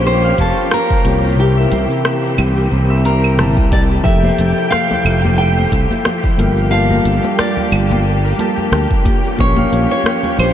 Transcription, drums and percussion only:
0.05 cabasa soft
0.38 kick medium
0.38 closed hi-hat medium
0.38 cabasa medium
0.57 cabasa soft
0.71 cross-stick loud
0.71 cabasa soft
0.90 kick loud
1.05 closed hi-hat medium
1.05 cabasa medium
1.23 cabasa soft
1.38 cabasa soft
1.72 closed hi-hat medium
1.72 cabasa medium
1.90 cabasa soft
2.05 cross-stick loud
2.05 cabasa soft
2.38 closed hi-hat medium
2.38 cabasa medium
2.38 claves medium
2.57 cabasa soft
2.72 cabasa soft
3.05 closed hi-hat medium
3.05 cabasa medium
3.24 cabasa soft
3.24 claves medium
3.39 cross-stick medium
3.39 cabasa soft
3.57 kick loud
3.72 kick loud
3.72 closed hi-hat medium
3.72 cabasa medium
3.91 cabasa soft
4.05 kick loud
4.05 cabasa soft
4.24 high conga medium
4.38 closed hi-hat medium
4.38 muted conga soft
4.38 cabasa medium
4.57 cabasa soft
4.72 cross-stick medium
4.72 high conga medium
4.72 cabasa soft
4.91 muted conga medium
4.91 low conga medium
5.06 closed hi-hat medium
5.06 cabasa medium
5.06 claves medium
5.24 high conga loud
5.24 low conga medium
5.24 cabasa soft
5.39 cabasa soft
5.59 muted conga medium
5.72 kick medium
5.72 closed hi-hat medium
5.72 cabasa medium
5.91 high conga medium
5.91 cabasa soft
6.05 cross-stick loud
6.05 muted conga medium
6.05 cabasa soft
6.24 kick loud
6.39 closed hi-hat medium
6.39 high conga medium
6.39 cabasa medium
6.57 cabasa soft
6.73 muted conga medium
6.73 cabasa soft
6.91 high conga medium
7.05 closed hi-hat medium
7.05 cabasa medium
7.24 muted conga medium
7.24 cabasa soft
7.39 cross-stick loud
7.39 high conga medium
7.39 cabasa soft
7.57 low conga medium
7.72 closed hi-hat loud
7.72 cabasa medium
7.72 claves medium
7.91 muted conga medium
7.91 high conga loud
7.91 low conga medium
7.91 cabasa soft
8.06 cabasa soft
8.39 closed hi-hat medium
8.39 muted conga medium
8.39 cabasa medium
8.58 high conga medium
8.58 cabasa soft
8.73 cross-stick medium
8.73 cabasa soft
8.91 kick loud
9.05 kick loud
9.05 closed hi-hat medium
9.05 muted conga medium
9.05 high conga medium
9.05 cabasa medium
9.24 cabasa soft
9.39 kick loud
9.39 cabasa soft
9.57 muted conga medium
9.57 high conga medium
9.73 closed hi-hat medium
9.73 cabasa medium
9.91 cabasa soft
10.04 cross-stick loud
10.04 high conga medium
10.04 cabasa soft
10.23 muted conga medium
10.23 low conga medium
10.39 closed hi-hat loud
10.39 cabasa medium
10.39 claves medium

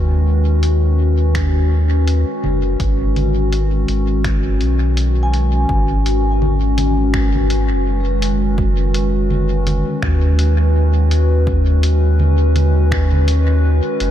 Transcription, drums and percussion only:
0.63 closed hi-hat medium
1.35 finger snap medium
1.35 kick medium
1.35 closed hi-hat soft
2.08 closed hi-hat medium
2.44 low conga medium
2.80 kick loud
2.80 closed hi-hat soft
3.16 closed hi-hat soft
3.16 low conga medium
3.53 closed hi-hat medium
3.88 closed hi-hat soft
4.24 finger snap medium
4.24 kick loud
4.24 closed hi-hat soft
4.61 closed hi-hat soft
4.97 closed hi-hat soft
5.34 closed hi-hat soft
5.69 kick loud
6.06 closed hi-hat medium
6.42 low conga medium
6.78 closed hi-hat medium
6.78 low conga medium
7.14 finger snap medium
7.14 kick loud
7.35 low conga medium
7.50 closed hi-hat medium
8.22 closed hi-hat medium
8.58 kick loud
8.94 closed hi-hat medium
9.30 low conga medium
9.67 closed hi-hat medium
9.67 low conga medium
10.02 finger snap medium
10.02 kick loud
10.39 closed hi-hat medium
11.11 closed hi-hat medium
11.47 kick loud
11.83 closed hi-hat medium
12.20 low conga medium
12.56 closed hi-hat soft
12.56 low conga medium
12.92 finger snap medium
12.92 kick loud
13.13 low conga medium
13.28 closed hi-hat medium
14.00 closed hi-hat medium

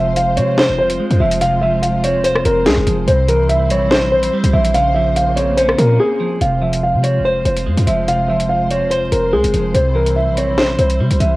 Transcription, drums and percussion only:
0.16 closed hi-hat medium
0.37 closed hi-hat medium
0.58 snare loud
0.90 closed hi-hat medium
1.11 closed hi-hat medium
1.31 closed hi-hat medium
1.41 closed hi-hat medium
1.83 closed hi-hat medium
2.04 closed hi-hat medium
2.24 closed hi-hat medium
2.35 cross-stick loud
2.45 closed hi-hat medium
2.66 snare loud
2.66 closed hi-hat medium
2.87 closed hi-hat medium
3.08 closed hi-hat medium
3.28 closed hi-hat medium
3.49 closed hi-hat medium
3.70 closed hi-hat medium
3.91 snare loud
4.23 closed hi-hat medium
4.44 closed hi-hat medium
4.65 closed hi-hat medium
4.74 closed hi-hat medium
5.16 closed hi-hat medium
5.37 closed hi-hat medium
5.58 closed hi-hat medium
5.69 cross-stick loud
5.79 closed hi-hat medium
6.41 closed hi-hat medium
6.73 closed hi-hat medium
7.04 closed hi-hat medium
7.45 closed hi-hat medium
7.56 closed hi-hat medium
7.77 closed hi-hat medium
7.87 closed hi-hat medium
8.08 closed hi-hat medium
8.40 closed hi-hat medium
8.70 closed hi-hat medium
8.91 closed hi-hat medium
9.12 closed hi-hat medium
9.44 closed hi-hat medium
9.54 closed hi-hat medium
9.75 closed hi-hat medium
10.06 closed hi-hat medium
10.37 closed hi-hat medium
10.58 snare loud
10.79 closed hi-hat medium
10.90 closed hi-hat medium
11.11 closed hi-hat medium
11.20 closed hi-hat medium

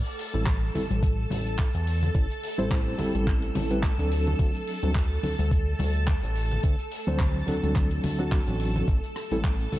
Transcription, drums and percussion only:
0.06 closed hi-hat soft
0.19 open hi-hat loud
0.34 closed hi-hat soft
0.34 high conga medium
0.46 kick loud
0.46 clap loud
0.46 closed hi-hat medium
0.75 open hi-hat loud
0.75 low conga medium
0.90 closed hi-hat medium
0.90 high conga medium
1.03 kick loud
1.03 closed hi-hat medium
1.30 open hi-hat loud
1.30 high conga medium
1.30 low conga medium
1.46 closed hi-hat soft
1.58 kick loud
1.58 clap loud
1.58 closed hi-hat medium
1.75 closed hi-hat medium
1.87 open hi-hat loud
2.03 closed hi-hat medium
2.03 low conga medium
2.15 kick loud
2.15 closed hi-hat medium
2.31 closed hi-hat medium
2.43 open hi-hat loud
2.58 closed hi-hat soft
2.58 high conga medium
2.70 kick loud
2.70 clap loud
2.70 closed hi-hat medium
2.98 open hi-hat loud
2.98 low conga medium
3.15 closed hi-hat medium
3.15 high conga medium
3.27 kick loud
3.27 clap medium
3.27 closed hi-hat medium
3.42 closed hi-hat medium
3.55 open hi-hat loud
3.55 high conga medium
3.55 low conga medium
3.70 closed hi-hat medium
3.83 kick loud
3.83 clap loud
3.83 closed hi-hat medium
3.99 closed hi-hat medium
4.11 open hi-hat medium
4.27 closed hi-hat soft
4.27 low conga medium
4.39 kick loud
4.39 closed hi-hat medium
4.55 closed hi-hat medium
4.67 open hi-hat loud
4.83 closed hi-hat medium
4.83 high conga medium
4.95 kick loud
4.95 clap loud
4.95 closed hi-hat medium
5.23 open hi-hat medium
5.23 low conga medium
5.39 closed hi-hat medium
5.39 high conga medium
5.51 kick loud
5.51 closed hi-hat medium
5.79 open hi-hat loud
5.79 high conga medium
5.79 low conga medium
5.95 closed hi-hat soft
6.08 kick loud
6.08 clap loud
6.08 closed hi-hat medium
6.23 closed hi-hat medium
6.35 open hi-hat medium
6.51 closed hi-hat soft
6.51 low conga medium
6.63 kick loud
6.63 closed hi-hat medium
6.80 closed hi-hat medium
6.91 open hi-hat loud
7.08 closed hi-hat medium
7.08 high conga medium
7.20 kick loud
7.20 clap loud
7.20 closed hi-hat medium
7.48 open hi-hat loud
7.48 low conga medium
7.63 closed hi-hat medium
7.63 high conga medium
7.75 kick loud
7.75 clap medium
7.75 closed hi-hat medium
7.91 closed hi-hat soft
8.03 open hi-hat loud
8.03 high conga medium
8.03 low conga medium
8.20 closed hi-hat soft
8.32 kick loud
8.32 clap loud
8.32 closed hi-hat medium
8.47 closed hi-hat medium
8.60 open hi-hat medium
8.75 closed hi-hat soft
8.75 low conga medium
8.88 kick loud
8.88 closed hi-hat medium
8.88 shaker medium
9.04 closed hi-hat soft
9.04 shaker soft
9.16 cross-stick medium
9.16 open hi-hat medium
9.16 shaker medium
9.31 closed hi-hat medium
9.31 high conga medium
9.31 shaker soft
9.44 kick loud
9.44 clap loud
9.44 closed hi-hat medium
9.44 shaker medium
9.60 shaker soft
9.72 open hi-hat loud
9.72 low conga medium
9.72 shaker medium

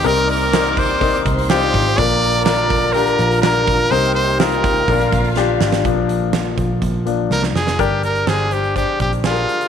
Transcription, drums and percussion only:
0.04 hi-hat pedal medium
0.04 open hi-hat medium
0.17 hi-hat pedal medium
0.28 hi-hat pedal medium
0.28 open hi-hat medium
0.41 open hi-hat medium
0.53 snare loud
0.53 hi-hat pedal medium
0.53 open hi-hat medium
0.66 hi-hat pedal medium
0.77 kick medium
0.77 hi-hat pedal medium
0.77 open hi-hat medium
0.90 open hi-hat soft
1.01 kick medium
1.01 hi-hat pedal medium
1.01 open hi-hat medium
1.13 hi-hat pedal medium
1.13 open hi-hat soft
1.26 kick medium
1.26 hi-hat pedal medium
1.26 open hi-hat medium
1.38 hi-hat pedal medium
1.38 open hi-hat soft
1.50 snare loud
1.50 hi-hat pedal medium
1.50 open hi-hat medium
1.62 hi-hat pedal medium
1.74 kick medium
1.74 hi-hat pedal medium
1.74 open hi-hat medium
1.86 open hi-hat medium
1.98 kick loud
1.98 hi-hat pedal medium
1.98 open hi-hat medium
2.10 hi-hat pedal medium
2.22 hi-hat pedal medium
2.22 open hi-hat medium
2.33 open hi-hat medium
2.46 snare loud
2.46 hi-hat pedal medium
2.46 open hi-hat medium
2.58 hi-hat pedal medium
2.70 kick medium
2.70 hi-hat pedal medium
2.70 open hi-hat medium
2.82 open hi-hat soft
2.94 hi-hat pedal medium
2.94 open hi-hat medium
3.06 hi-hat pedal medium
3.06 open hi-hat soft
3.18 hi-hat pedal medium
3.18 open hi-hat medium
3.31 hi-hat pedal medium
3.31 open hi-hat soft
3.43 snare loud
3.43 hi-hat pedal medium
3.43 open hi-hat medium
3.55 hi-hat pedal medium
3.67 kick medium
3.67 hi-hat pedal medium
3.67 open hi-hat medium
3.80 open hi-hat medium
3.92 hi-hat pedal medium
3.92 open hi-hat medium
4.04 hi-hat pedal medium
4.16 hi-hat pedal medium
4.16 open hi-hat medium
4.27 open hi-hat soft
4.40 snare loud
4.40 hi-hat pedal medium
4.40 open hi-hat medium
4.52 hi-hat pedal medium
4.64 kick loud
4.64 snare soft
4.64 hi-hat pedal medium
4.64 open hi-hat medium
4.76 open hi-hat soft
4.88 kick medium
4.88 hi-hat pedal medium
4.88 open hi-hat medium
5.00 hi-hat pedal medium
5.12 kick medium
5.12 hi-hat pedal medium
5.12 open hi-hat medium
5.25 open hi-hat soft
5.37 snare medium
5.61 snare medium
5.72 snare medium
5.85 kick medium
5.85 closed hi-hat medium
6.09 closed hi-hat medium
6.33 snare loud
6.33 closed hi-hat medium
6.58 kick medium
6.58 closed hi-hat medium
6.82 kick medium
6.82 closed hi-hat medium
7.07 closed hi-hat medium
7.31 snare medium
7.43 snare medium
7.55 snare medium
7.67 snare medium
7.79 kick medium
7.79 closed hi-hat medium
8.03 closed hi-hat medium
8.15 closed hi-hat soft
8.27 snare medium
8.51 closed hi-hat medium
8.64 closed hi-hat soft
8.76 kick medium
8.76 closed hi-hat medium
9.00 kick medium
9.00 closed hi-hat medium
9.13 closed hi-hat soft
9.24 snare loud
9.36 closed hi-hat soft
9.49 closed hi-hat medium
9.61 closed hi-hat medium

